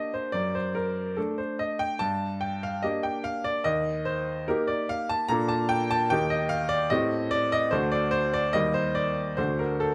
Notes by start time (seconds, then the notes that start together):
Already playing: A#3 D4 G4 D#5
0.14 C5
0.32 F#2 D5
0.55 C5
0.75 A#4
1.17 A3 D4 A4
1.38 C5
1.59 D#5
1.79 G5
1.99 G2 A5
2.41 G5
2.63 F5
2.82 A#3 D4 G4 D#5
3.03 G5
3.24 F5
3.44 D5
3.64 D#2 D#5
4.05 C5
4.48 A#3 D#4 G4 A#4
4.68 D5
4.89 F5
5.09 A5
5.28 A#2 A#3 D4 A4 A#5
5.48 A5
5.69 G5
5.91 A5
6.10 D#2 A#3 D#4 G4 G5
6.30 D#5
6.49 F5
6.69 D5
6.90 A2 A3 C4 G4 D#5
7.31 D5
7.52 D#5
7.71 D2 A3 D4 F#4 C5
7.92 D5
8.11 C5
8.34 D5
8.53 D#2 G3 A#3 G4 D#5
8.74 C5
8.95 D5
9.37 D2 A3 D4 F#4 C5
9.59 A#4
9.80 A4